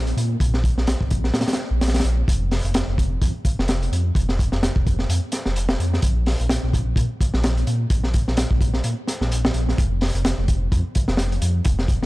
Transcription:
Already playing: detuned saw bass A#1
0.07 closed hi-hat
0.17 detuned saw bass A#2, closed hi-hat
0.40 detuned saw bass A#1, kick, closed hi-hat
0.54 snare
0.64 kick, closed hi-hat
0.77 detuned saw bass A#1, snare
0.87 snare, closed hi-hat
1.01 detuned saw bass A#1, kick
1.10 kick, closed hi-hat
1.24 snare
1.34 detuned saw bass A#2, snare, closed hi-hat
1.41 snare, closed hi-hat
1.48 snare, closed hi-hat
1.53 snare, closed hi-hat
1.71 detuned saw bass A#1
1.81 snare, closed hi-hat
1.87 snare, closed hi-hat
1.94 snare, closed hi-hat
2.00 snare, closed hi-hat
2.04 detuned saw bass A#1, closed hi-hat
2.28 detuned saw bass F1, kick, closed hi-hat
2.51 snare, open hi-hat
2.64 detuned saw bass F1, closed hi-hat
2.74 snare, closed hi-hat
2.88 detuned saw bass F1
2.98 kick, closed hi-hat
3.22 detuned saw bass F2, kick, closed hi-hat
3.45 kick, closed hi-hat
3.58 detuned saw bass F1, snare
3.68 snare, closed hi-hat
3.82 closed hi-hat
3.92 detuned saw bass F2, closed hi-hat
4.15 detuned saw bass F1, kick, closed hi-hat
4.29 snare
4.39 kick, closed hi-hat
4.52 detuned saw bass F1, snare
4.63 snare, closed hi-hat
4.76 detuned saw bass F1, kick
4.87 kick, closed hi-hat
4.99 snare
5.09 detuned saw bass F2, closed hi-hat
5.32 snare, closed hi-hat
5.46 detuned saw bass F1, snare
5.56 closed hi-hat
5.69 snare
5.80 detuned saw bass F2, closed hi-hat
5.94 snare
6.02 detuned saw bass A#1, kick, closed hi-hat
6.26 snare, open hi-hat
6.40 detuned saw bass A#1, closed hi-hat
6.49 snare, closed hi-hat
6.63 detuned saw bass A#1
6.73 kick, closed hi-hat
6.96 detuned saw bass A#2, kick, closed hi-hat
7.21 kick, closed hi-hat
7.34 detuned saw bass A#1, snare
7.44 snare, closed hi-hat
7.57 closed hi-hat
7.67 detuned saw bass A#2, closed hi-hat
7.90 detuned saw bass A#1, kick, closed hi-hat
8.04 snare
8.14 kick, closed hi-hat
8.27 detuned saw bass A#1, snare
8.37 snare, closed hi-hat
8.51 detuned saw bass A#1, kick
8.61 kick, closed hi-hat
8.74 snare
8.84 detuned saw bass A#2, closed hi-hat
9.07 snare, closed hi-hat
9.21 detuned saw bass A#1, snare
9.32 closed hi-hat
9.45 snare
9.54 detuned saw bass A#1, closed hi-hat
9.69 snare
9.78 detuned saw bass F1, kick, closed hi-hat
10.01 snare, open hi-hat
10.15 detuned saw bass F1, closed hi-hat
10.25 snare, closed hi-hat
10.38 detuned saw bass F1
10.48 kick, closed hi-hat
10.72 detuned saw bass F2, kick, closed hi-hat
10.95 kick, closed hi-hat
11.08 detuned saw bass F1, snare
11.17 snare, closed hi-hat
11.32 closed hi-hat
11.42 detuned saw bass F2, closed hi-hat
11.65 detuned saw bass F1, kick, closed hi-hat
11.79 snare
11.88 kick, closed hi-hat
12.02 detuned saw bass F1, snare

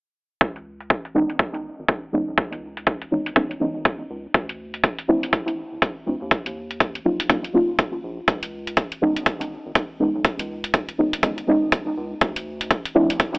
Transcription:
0.41 analog synth bass C#2, kick
0.56 closed hi-hat
0.80 closed hi-hat
0.90 kick
1.05 closed hi-hat
1.14 analog synth bass G#1, synth stab E3 G#3 B3 C#4 D#4
1.30 closed hi-hat
1.39 kick
1.54 closed hi-hat
1.79 analog synth bass G#1
1.88 kick, closed hi-hat
2.12 analog synth bass C#2, synth stab E3 G#3 B3 C#4 D#4
2.28 analog synth bass B1
2.38 kick, closed hi-hat
2.52 analog synth bass C#2, closed hi-hat
2.77 closed hi-hat
2.87 kick, closed hi-hat
3.02 closed hi-hat
3.11 analog synth bass G#1, synth stab E3 G#3 B3 C#4 D#4
3.26 closed hi-hat
3.35 synth stab E3 G#3 B3 C#4 D#4, kick, closed hi-hat
3.51 closed hi-hat
3.60 analog synth bass B1, synth stab E3 G#3 B3 C#4 D#4
3.76 analog synth bass G#1
3.85 kick, closed hi-hat
4.10 analog synth bass C#2
4.34 analog synth bass D2, kick, closed hi-hat
4.49 closed hi-hat
4.74 closed hi-hat
4.84 kick, closed hi-hat
4.99 closed hi-hat
5.08 analog synth bass A1, synth stab F3 A3 C4 D4 E4
5.23 closed hi-hat
5.33 kick, closed hi-hat
5.48 closed hi-hat
5.72 analog synth bass D1
5.82 kick, closed hi-hat
6.06 analog synth bass D2, synth stab F3 A3 C4 D4 E4
6.21 analog synth bass D#2
6.31 kick, closed hi-hat
6.46 analog synth bass D#2, closed hi-hat
6.71 closed hi-hat
6.80 kick, closed hi-hat
6.95 closed hi-hat
7.05 analog synth bass A#1, synth stab F#3 A#3 C#4 D#4 F4
7.20 closed hi-hat
7.29 synth stab F#3 A#3 C#4 D#4 F4, kick, closed hi-hat
7.44 closed hi-hat
7.53 analog synth bass D#1, synth stab F#3 A#3 C#4 D#4 F4
7.79 kick, closed hi-hat
8.03 analog synth bass A#1
8.28 analog synth bass C#2, kick, closed hi-hat
8.43 closed hi-hat
8.67 closed hi-hat
8.77 kick, closed hi-hat
8.92 closed hi-hat
9.01 analog synth bass G#1, synth stab E3 G#3 B3 C#4 D#4
9.16 closed hi-hat
9.26 kick, closed hi-hat
9.41 closed hi-hat
9.66 analog synth bass G#1
9.75 kick, closed hi-hat
10.00 analog synth bass C#2, synth stab E3 G#3 B3 C#4 D#4
10.15 analog synth bass B1
10.25 kick, closed hi-hat
10.39 analog synth bass C#2, closed hi-hat
10.64 closed hi-hat
10.74 kick, closed hi-hat
10.89 closed hi-hat
10.98 analog synth bass G#1, synth stab E3 G#3 B3 C#4 D#4
11.13 closed hi-hat
11.23 synth stab E3 G#3 B3 C#4 D#4, kick, closed hi-hat
11.38 closed hi-hat
11.47 analog synth bass B1, synth stab E3 G#3 B3 C#4 D#4
11.63 analog synth bass G#1
11.72 kick, closed hi-hat
11.97 analog synth bass C#2
12.21 analog synth bass D2, kick, closed hi-hat
12.36 closed hi-hat
12.61 closed hi-hat
12.71 kick, closed hi-hat
12.85 closed hi-hat
12.95 analog synth bass A1, synth stab F3 A3 C4 D4 E4
13.10 closed hi-hat
13.20 kick, closed hi-hat
13.35 closed hi-hat

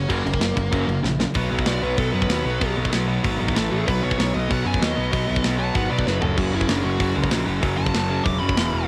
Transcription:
Already playing: lead electric guitar C#5
0.09 picked electric bass F#1, distorted electric guitar F#2 C#3 F#3, lead electric guitar A#3 A#4, kick, crash
0.25 picked electric bass F#1, distorted electric guitar F#2 C#3, crash
0.34 kick
0.40 picked electric bass F#1, distorted electric guitar F#2 C#3, snare, crash
0.57 picked electric bass F#1, distorted electric guitar F#2 C#3, kick, crash
0.72 picked electric bass F#1, distorted electric guitar F#2 C#3 F#3, kick, crash
0.88 picked electric bass F#1, distorted electric guitar F#2 C#3, crash
1.03 picked electric bass A#1, distorted electric guitar F#2 C#3, snare
1.19 distorted electric guitar F#2 C#3, snare
1.34 picked electric bass B1, distorted electric guitar B2 F#3 B3, kick, open hi-hat
1.49 picked electric bass B1, distorted electric guitar B2 F#3 B3
1.59 kick
1.66 picked electric bass B1, distorted electric guitar B2 F#3 B3, lead electric guitar D5, snare, open hi-hat
1.82 picked electric bass B1, distorted electric guitar B2 F#3 B3, lead electric guitar B4
1.97 picked electric bass B1, distorted electric guitar B2 F#3 B3, lead electric guitar A4, kick, open hi-hat
2.12 picked electric bass F#2, distorted electric guitar B2 F#3 B3, lead electric guitar B4
2.22 kick
2.28 picked electric bass D#2, distorted electric guitar B2 F#3 B3, snare, open hi-hat
2.45 picked electric bass B1, distorted electric guitar B2 F#3 B3
2.60 picked electric bass B1, distorted electric guitar B2 F#3 B3, kick, open hi-hat
2.76 picked electric bass B1, distorted electric guitar B2 F#3 B3
2.85 kick
2.92 picked electric bass B1, distorted electric guitar B2 F#3 B3, snare, open hi-hat
3.08 distorted electric guitar B2 F#3 B3
3.24 picked electric bass G#1, distorted electric guitar B2 F#3 B3, kick, open hi-hat
3.39 picked electric bass G#1, distorted electric guitar B2 F#3 B3
3.48 kick
3.55 picked electric bass A1, distorted electric guitar A2 E3 A3, snare, open hi-hat
3.70 picked electric bass A1, distorted electric guitar A2 E3 A3, lead electric guitar G#4
3.85 picked electric bass B1, distorted electric guitar B2 F#3 B3, lead electric guitar B4, kick, open hi-hat
4.01 picked electric bass B1, distorted electric guitar B2 F#3 B3, lead electric guitar C#5
4.11 kick
4.17 picked electric bass B1, distorted electric guitar B2 F#3 B3, snare, open hi-hat
4.33 picked electric bass B1, distorted electric guitar B2 F#3 B3, lead electric guitar D#5
4.49 picked electric bass B1, distorted electric guitar B2 F#3 B3, lead electric guitar F#5, kick, open hi-hat
4.65 picked electric bass F#2, distorted electric guitar B2 F#3 B3, lead electric guitar G#5
4.74 kick
4.81 picked electric bass D#2, distorted electric guitar B2 F#3 B3, lead electric guitar D#5, snare, open hi-hat
4.96 picked electric bass B1, distorted electric guitar B2 F#3 B3
5.12 picked electric bass B1, distorted electric guitar B2 F#3 B3, kick, open hi-hat
5.27 picked electric bass B1, distorted electric guitar B2 F#3 B3
5.36 kick
5.43 picked electric bass B1, distorted electric guitar B2 F#3 B3, snare, open hi-hat
5.58 distorted electric guitar B2 F#3 B3, lead electric guitar A5
5.74 picked electric bass G#1, distorted electric guitar B2 F#3 B3, lead electric guitar F#5, kick, open hi-hat
5.89 distorted electric guitar B2 F#3 B3, picked electric bass B2, lead electric guitar D5
5.99 kick
6.05 picked electric bass F#1, distorted electric guitar F#2 C#3 F#3, lead electric guitar B4, snare
6.21 picked electric bass F#1, distorted electric guitar F#2 C#3 F#3, lead electric guitar A4, floor tom
6.36 picked electric bass F#1, distorted electric guitar F#2 C#3 F#3, lead electric guitar F#4, kick, crash
6.52 picked electric bass F#1, distorted electric guitar F#2 C#3 F#3, lead electric guitar E4
6.61 kick
6.67 picked electric bass F#1, distorted electric guitar F#2 C#3 F#3, lead electric guitar D4, snare, open hi-hat
6.82 picked electric bass F#1, distorted electric guitar F#2 C#3 F#3, lead electric guitar F#4
6.98 picked electric bass F#1, distorted electric guitar F#2 C#3 F#3, kick, open hi-hat
7.14 picked electric bass C#2, distorted electric guitar F#2 C#3 F#3
7.24 kick
7.31 picked electric bass A#1, distorted electric guitar F#2 C#3 F#3, snare, open hi-hat
7.46 picked electric bass F#1, distorted electric guitar F#2 C#3 F#3
7.62 picked electric bass F#1, distorted electric guitar F#2 C#3 F#3, kick, open hi-hat
7.77 picked electric bass F#1, distorted electric guitar F#2 C#3 F#3, lead electric guitar A5
7.86 kick
7.93 picked electric bass F#1, distorted electric guitar F#2 C#3 F#3, snare, open hi-hat
8.09 distorted electric guitar F#2 C#3 F#3, lead electric guitar A5
8.24 picked electric bass E1, distorted electric guitar F#2 C#3 F#3, lead electric guitar D6, kick, open hi-hat
8.40 distorted electric guitar F#2 C#3 F#3, picked electric bass F#2, lead electric guitar B5
8.49 kick
8.56 picked electric bass E1, distorted electric guitar E2 B2 E3, snare, open hi-hat
8.72 picked electric bass E1, distorted electric guitar E2 B2 E3

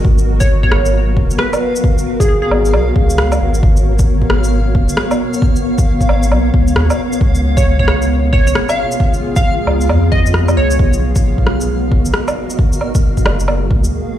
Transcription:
Already playing: ambient pad B3 F#4 A#4 D#5
0.04 sub bass G#1, synth texture F5, kick
0.18 shaker
0.40 synth pluck C#5, kick, shaker
0.63 synth pluck C#5, kick
0.71 sub bass G#1, synth pluck C#5, cross-stick
0.84 ambient pad C#5, shaker
1.17 sub bass D#1, kick
1.30 sub bass G#1, shaker
1.38 synth pluck B4, cross-stick
1.53 low woodblock, shaker
1.76 shaker
1.84 kick
1.98 shaker
2.20 synth pluck G#4, kick, shaker
2.28 synth pluck G#4
2.42 synth pluck G#4
2.50 sub bass G#1, low woodblock
2.65 shaker
2.73 sub bass B1, low woodblock
2.96 sub bass C#2, kick
3.10 shaker
3.18 cross-stick
3.32 low woodblock, shaker
3.40 sub bass G#1
3.54 shaker
3.63 sub bass G#1, kick
3.77 shaker
3.99 kick, shaker
4.22 kick
4.30 sub bass G#1, cross-stick
4.44 shaker
4.75 sub bass D#1, kick
4.89 sub bass G#1, shaker
4.97 cross-stick
5.11 low woodblock, shaker
5.33 shaker
5.42 kick
5.56 shaker
5.78 kick, shaker
6.01 kick, shaker
6.09 sub bass G#1, low woodblock
6.23 shaker
6.31 sub bass B1, low woodblock
6.54 sub bass C#2, kick
6.68 shaker
6.76 sub bass D#2, cross-stick
6.90 low woodblock, shaker
7.13 shaker
7.21 sub bass C#2, kick
7.35 shaker
7.43 ambient pad F4
7.56 ambient pad G#4, synth pluck C#5, kick, shaker
7.79 synth pluck C#5, kick
7.88 sub bass C#2, synth pluck C#5, cross-stick
8.02 shaker
8.33 sub bass G#1, synth pluck C#5, kick
8.47 sub bass C#2, synth pluck C#5, shaker
8.55 cross-stick
8.69 synth pluck F5, low woodblock, shaker
8.91 shaker
9.00 kick
9.14 shaker
9.36 synth pluck F5, kick, shaker
9.67 sub bass C#2, low woodblock
9.81 shaker
9.89 sub bass F2, low woodblock
10.12 sub bass F2, synth pluck D#5, kick
10.26 shaker
10.34 cross-stick
10.48 low woodblock, shaker
10.57 sub bass C#2, synth pluck C#5
10.71 shaker
10.79 sub bass B1, kick
10.89 ambient pad F#4, shaker
11.04 ambient pad A#4
11.16 kick, shaker
11.31 ambient pad D#5
11.38 kick
11.46 sub bass B1, cross-stick
11.61 shaker
11.91 sub bass F#1, kick
12.05 sub bass B1, shaker
12.14 cross-stick
12.28 low woodblock, shaker
12.50 shaker
12.59 kick
12.73 shaker
12.81 low woodblock
12.95 kick, shaker
13.17 kick, shaker
13.25 sub bass F#1, cross-stick, low woodblock
13.40 shaker
13.48 low woodblock
13.70 sub bass C#2, kick
13.84 sub bass C#2, shaker

